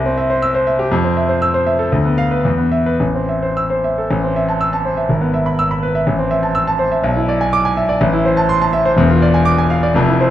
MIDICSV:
0, 0, Header, 1, 2, 480
1, 0, Start_track
1, 0, Key_signature, 0, "minor"
1, 0, Tempo, 497925
1, 883, Time_signature, 2, 2, 24, 8
1, 1848, Tempo, 548948
1, 3288, Tempo, 518135
1, 4248, Tempo, 485044
1, 9048, Tempo, 504626
1, 9859, End_track
2, 0, Start_track
2, 0, Title_t, "Grand piano"
2, 0, Program_c, 0, 0
2, 0, Note_on_c, 0, 36, 82
2, 54, Note_on_c, 0, 60, 65
2, 118, Control_c, 0, 64, 127
2, 168, Note_on_c, 0, 76, 67
2, 242, Note_off_c, 0, 60, 0
2, 289, Note_on_c, 0, 72, 71
2, 357, Note_off_c, 0, 76, 0
2, 409, Note_on_c, 0, 88, 96
2, 477, Note_off_c, 0, 72, 0
2, 525, Note_on_c, 0, 72, 72
2, 597, Note_off_c, 0, 88, 0
2, 645, Note_on_c, 0, 76, 68
2, 715, Note_off_c, 0, 72, 0
2, 762, Note_on_c, 0, 67, 73
2, 836, Note_off_c, 0, 76, 0
2, 856, Note_off_c, 0, 36, 0
2, 881, Note_on_c, 0, 41, 92
2, 883, Note_off_c, 0, 67, 0
2, 902, Control_c, 0, 64, 0
2, 1002, Note_on_c, 0, 60, 62
2, 1032, Control_c, 0, 64, 127
2, 1126, Note_on_c, 0, 76, 64
2, 1195, Note_off_c, 0, 60, 0
2, 1242, Note_on_c, 0, 72, 69
2, 1316, Note_off_c, 0, 76, 0
2, 1367, Note_on_c, 0, 88, 93
2, 1434, Note_off_c, 0, 72, 0
2, 1486, Note_on_c, 0, 72, 72
2, 1557, Note_off_c, 0, 88, 0
2, 1605, Note_on_c, 0, 76, 66
2, 1678, Note_off_c, 0, 72, 0
2, 1726, Note_on_c, 0, 69, 67
2, 1800, Note_off_c, 0, 76, 0
2, 1819, Note_off_c, 0, 41, 0
2, 1849, Note_off_c, 0, 69, 0
2, 1852, Note_on_c, 0, 38, 81
2, 1868, Control_c, 0, 64, 0
2, 1965, Note_on_c, 0, 59, 59
2, 2031, Control_c, 0, 64, 127
2, 2076, Note_on_c, 0, 77, 88
2, 2147, Note_off_c, 0, 59, 0
2, 2192, Note_on_c, 0, 71, 63
2, 2262, Note_off_c, 0, 77, 0
2, 2297, Note_off_c, 0, 38, 0
2, 2309, Note_off_c, 0, 71, 0
2, 2313, Note_on_c, 0, 40, 76
2, 2329, Control_c, 0, 64, 0
2, 2427, Note_on_c, 0, 59, 56
2, 2488, Control_c, 0, 64, 127
2, 2546, Note_on_c, 0, 76, 67
2, 2620, Note_off_c, 0, 59, 0
2, 2674, Note_on_c, 0, 71, 61
2, 2744, Note_off_c, 0, 76, 0
2, 2782, Note_off_c, 0, 40, 0
2, 2796, Note_on_c, 0, 33, 70
2, 2797, Note_off_c, 0, 71, 0
2, 2811, Control_c, 0, 64, 0
2, 2924, Note_on_c, 0, 60, 53
2, 2962, Control_c, 0, 64, 127
2, 3047, Note_on_c, 0, 76, 56
2, 3121, Note_off_c, 0, 60, 0
2, 3167, Note_on_c, 0, 72, 58
2, 3242, Note_off_c, 0, 76, 0
2, 3292, Note_on_c, 0, 88, 76
2, 3365, Note_off_c, 0, 72, 0
2, 3415, Note_on_c, 0, 72, 59
2, 3493, Note_off_c, 0, 88, 0
2, 3546, Note_on_c, 0, 76, 52
2, 3616, Note_off_c, 0, 72, 0
2, 3675, Note_on_c, 0, 69, 55
2, 3739, Note_off_c, 0, 76, 0
2, 3754, Note_off_c, 0, 33, 0
2, 3789, Note_off_c, 0, 69, 0
2, 3790, Note_on_c, 0, 33, 78
2, 3799, Control_c, 0, 64, 0
2, 3907, Note_on_c, 0, 60, 56
2, 3955, Control_c, 0, 64, 127
2, 4027, Note_on_c, 0, 76, 59
2, 4090, Note_off_c, 0, 60, 0
2, 4142, Note_on_c, 0, 81, 62
2, 4208, Note_off_c, 0, 76, 0
2, 4255, Note_on_c, 0, 88, 86
2, 4327, Note_off_c, 0, 81, 0
2, 4377, Note_on_c, 0, 81, 64
2, 4446, Note_off_c, 0, 88, 0
2, 4498, Note_on_c, 0, 72, 58
2, 4566, Note_off_c, 0, 81, 0
2, 4616, Note_on_c, 0, 76, 58
2, 4687, Note_off_c, 0, 72, 0
2, 4706, Note_off_c, 0, 33, 0
2, 4734, Note_off_c, 0, 76, 0
2, 4735, Note_on_c, 0, 32, 72
2, 4749, Control_c, 0, 64, 0
2, 4852, Note_on_c, 0, 59, 55
2, 4936, Control_c, 0, 64, 127
2, 4978, Note_on_c, 0, 76, 56
2, 5048, Note_off_c, 0, 59, 0
2, 5099, Note_on_c, 0, 83, 63
2, 5172, Note_off_c, 0, 76, 0
2, 5226, Note_on_c, 0, 88, 92
2, 5293, Note_off_c, 0, 83, 0
2, 5345, Note_on_c, 0, 83, 66
2, 5416, Note_off_c, 0, 88, 0
2, 5463, Note_on_c, 0, 71, 60
2, 5534, Note_off_c, 0, 83, 0
2, 5584, Note_on_c, 0, 76, 67
2, 5653, Note_off_c, 0, 71, 0
2, 5672, Note_off_c, 0, 32, 0
2, 5702, Note_off_c, 0, 76, 0
2, 5702, Note_on_c, 0, 33, 74
2, 5716, Control_c, 0, 64, 0
2, 5819, Note_on_c, 0, 60, 63
2, 5900, Control_c, 0, 64, 127
2, 5938, Note_on_c, 0, 76, 66
2, 6009, Note_off_c, 0, 60, 0
2, 6058, Note_on_c, 0, 81, 64
2, 6128, Note_off_c, 0, 76, 0
2, 6177, Note_on_c, 0, 88, 89
2, 6249, Note_off_c, 0, 81, 0
2, 6300, Note_on_c, 0, 81, 72
2, 6368, Note_off_c, 0, 88, 0
2, 6416, Note_on_c, 0, 72, 71
2, 6491, Note_off_c, 0, 81, 0
2, 6540, Note_on_c, 0, 76, 66
2, 6609, Note_off_c, 0, 72, 0
2, 6631, Note_off_c, 0, 33, 0
2, 6659, Note_on_c, 0, 35, 86
2, 6660, Note_off_c, 0, 76, 0
2, 6674, Control_c, 0, 64, 0
2, 6785, Note_on_c, 0, 64, 65
2, 6828, Control_c, 0, 64, 127
2, 6907, Note_on_c, 0, 74, 70
2, 6976, Note_off_c, 0, 64, 0
2, 7027, Note_on_c, 0, 80, 73
2, 7096, Note_off_c, 0, 74, 0
2, 7146, Note_on_c, 0, 86, 102
2, 7215, Note_off_c, 0, 80, 0
2, 7266, Note_on_c, 0, 80, 79
2, 7333, Note_off_c, 0, 86, 0
2, 7386, Note_on_c, 0, 76, 70
2, 7451, Note_off_c, 0, 80, 0
2, 7503, Note_on_c, 0, 74, 74
2, 7571, Note_off_c, 0, 76, 0
2, 7586, Note_off_c, 0, 35, 0
2, 7618, Note_off_c, 0, 74, 0
2, 7622, Note_on_c, 0, 33, 92
2, 7634, Control_c, 0, 64, 0
2, 7740, Note_on_c, 0, 64, 73
2, 7798, Control_c, 0, 64, 127
2, 7861, Note_on_c, 0, 72, 74
2, 7928, Note_off_c, 0, 64, 0
2, 7978, Note_on_c, 0, 81, 80
2, 8049, Note_off_c, 0, 72, 0
2, 8099, Note_on_c, 0, 84, 103
2, 8167, Note_off_c, 0, 81, 0
2, 8221, Note_on_c, 0, 81, 80
2, 8287, Note_off_c, 0, 84, 0
2, 8334, Note_on_c, 0, 76, 83
2, 8408, Note_off_c, 0, 81, 0
2, 8459, Note_on_c, 0, 72, 83
2, 8524, Note_off_c, 0, 76, 0
2, 8546, Note_off_c, 0, 33, 0
2, 8569, Note_on_c, 0, 28, 84
2, 8574, Note_off_c, 0, 72, 0
2, 8578, Note_on_c, 0, 40, 98
2, 8590, Control_c, 0, 64, 0
2, 8699, Note_on_c, 0, 65, 73
2, 8724, Control_c, 0, 64, 127
2, 8822, Note_on_c, 0, 74, 74
2, 8886, Note_off_c, 0, 65, 0
2, 8938, Note_on_c, 0, 80, 76
2, 9008, Note_off_c, 0, 74, 0
2, 9052, Note_on_c, 0, 86, 108
2, 9124, Note_off_c, 0, 80, 0
2, 9175, Note_on_c, 0, 80, 78
2, 9237, Note_off_c, 0, 86, 0
2, 9288, Note_on_c, 0, 77, 78
2, 9359, Note_off_c, 0, 80, 0
2, 9409, Note_on_c, 0, 74, 74
2, 9477, Note_off_c, 0, 77, 0
2, 9494, Note_off_c, 0, 28, 0
2, 9499, Note_off_c, 0, 40, 0
2, 9517, Note_on_c, 0, 29, 91
2, 9526, Note_off_c, 0, 74, 0
2, 9530, Note_on_c, 0, 41, 94
2, 9541, Control_c, 0, 64, 0
2, 9648, Note_on_c, 0, 64, 72
2, 9712, Control_c, 0, 64, 127
2, 9766, Note_on_c, 0, 72, 69
2, 9844, Note_off_c, 0, 64, 0
2, 9859, Note_off_c, 0, 29, 0
2, 9859, Note_off_c, 0, 41, 0
2, 9859, Note_off_c, 0, 72, 0
2, 9859, End_track
0, 0, End_of_file